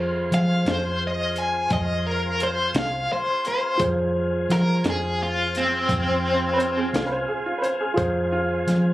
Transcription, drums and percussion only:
0.32 closed hi-hat
0.66 snare, closed hi-hat
1.36 closed hi-hat
1.70 kick, closed hi-hat
2.40 closed hi-hat
2.75 snare, closed hi-hat
3.45 closed hi-hat
3.80 kick, closed hi-hat
4.50 snare, closed hi-hat
4.84 snare, closed hi-hat
5.55 closed hi-hat
5.89 kick, closed hi-hat
6.60 closed hi-hat
6.94 snare, closed hi-hat
7.64 closed hi-hat
7.98 kick, closed hi-hat
8.68 snare, closed hi-hat

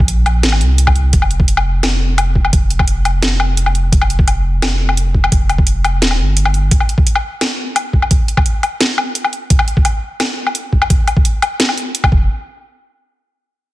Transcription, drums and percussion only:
0.08 closed hi-hat
0.26 closed hi-hat, low woodblock
0.43 snare, closed hi-hat
0.52 low woodblock
0.61 closed hi-hat
0.78 closed hi-hat
0.87 kick, low woodblock
0.96 closed hi-hat
1.13 kick, closed hi-hat
1.22 low woodblock
1.31 closed hi-hat
1.40 kick
1.48 closed hi-hat
1.57 low woodblock
1.83 snare, closed hi-hat, low woodblock
2.18 closed hi-hat, low woodblock
2.35 kick
2.45 low woodblock
2.53 kick, closed hi-hat
2.70 closed hi-hat
2.79 kick, low woodblock
2.88 closed hi-hat
3.05 closed hi-hat, low woodblock
3.22 snare, closed hi-hat
3.40 low woodblock
3.57 closed hi-hat
3.66 low woodblock
3.75 closed hi-hat
3.92 kick, closed hi-hat
4.02 low woodblock
4.10 closed hi-hat
4.19 kick
4.28 closed hi-hat, low woodblock
4.62 snare, closed hi-hat, low woodblock
4.89 low woodblock
4.97 closed hi-hat
5.14 kick
5.24 low woodblock
5.32 kick, closed hi-hat
5.49 closed hi-hat, low woodblock
5.58 kick
5.67 closed hi-hat
5.85 closed hi-hat, low woodblock
6.02 snare, closed hi-hat
6.11 low woodblock
6.37 closed hi-hat
6.45 low woodblock
6.54 closed hi-hat
6.71 kick, closed hi-hat
6.80 low woodblock
6.89 closed hi-hat
6.98 kick
7.07 closed hi-hat
7.15 low woodblock
7.41 snare, closed hi-hat, low woodblock
7.76 closed hi-hat, low woodblock
7.93 kick
8.02 low woodblock
8.11 kick, closed hi-hat
8.28 closed hi-hat
8.37 kick, low woodblock
8.46 closed hi-hat
8.63 closed hi-hat, low woodblock
8.81 snare, closed hi-hat
8.98 low woodblock
9.15 closed hi-hat
9.24 low woodblock
9.33 closed hi-hat
9.50 kick, closed hi-hat
9.59 low woodblock
9.68 closed hi-hat
9.77 kick
9.85 closed hi-hat, low woodblock
10.20 snare, closed hi-hat, low woodblock
10.47 low woodblock
10.55 closed hi-hat
10.73 kick
10.82 low woodblock
10.90 kick, closed hi-hat
11.08 closed hi-hat, low woodblock
11.17 kick
11.25 closed hi-hat
11.42 closed hi-hat, low woodblock
11.60 snare, closed hi-hat
11.69 low woodblock
11.78 closed hi-hat
11.95 closed hi-hat
12.04 kick, low woodblock
12.12 kick

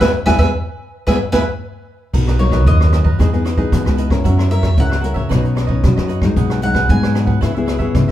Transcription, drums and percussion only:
0.01 kick, snare
0.27 kick, snare
0.40 kick, snare
1.08 kick, snare
1.33 kick, snare
2.14 kick, crash
2.27 cross-stick, closed hi-hat
2.39 closed hi-hat
2.52 kick, cross-stick, closed hi-hat
2.67 kick, closed hi-hat
2.81 cross-stick
2.93 cross-stick, closed hi-hat
3.05 kick
3.20 kick, cross-stick, closed hi-hat
3.34 closed hi-hat
3.45 cross-stick, closed hi-hat
3.58 kick, closed hi-hat
3.72 kick, cross-stick, closed hi-hat
3.86 cross-stick, closed hi-hat
3.98 closed hi-hat
4.10 kick, cross-stick, closed hi-hat
4.25 kick, closed hi-hat
4.39 cross-stick, closed hi-hat
4.51 closed hi-hat
4.63 kick, cross-stick, closed hi-hat
4.77 kick, closed hi-hat
4.92 cross-stick
5.04 closed hi-hat
5.16 kick, closed hi-hat
5.31 kick, cross-stick, closed hi-hat
5.45 closed hi-hat
5.57 cross-stick, closed hi-hat
5.69 kick
5.84 kick, cross-stick, closed hi-hat
5.97 cross-stick, closed hi-hat
6.09 closed hi-hat
6.22 kick, cross-stick
6.37 kick, closed hi-hat
6.50 cross-stick, closed hi-hat
6.62 closed hi-hat
6.75 kick, cross-stick, closed hi-hat
6.89 kick, closed hi-hat
7.03 cross-stick
7.15 cross-stick, closed hi-hat
7.27 kick
7.42 kick, cross-stick, closed hi-hat
7.56 closed hi-hat
7.68 cross-stick, closed hi-hat
7.80 kick, closed hi-hat
7.95 kick, cross-stick, closed hi-hat

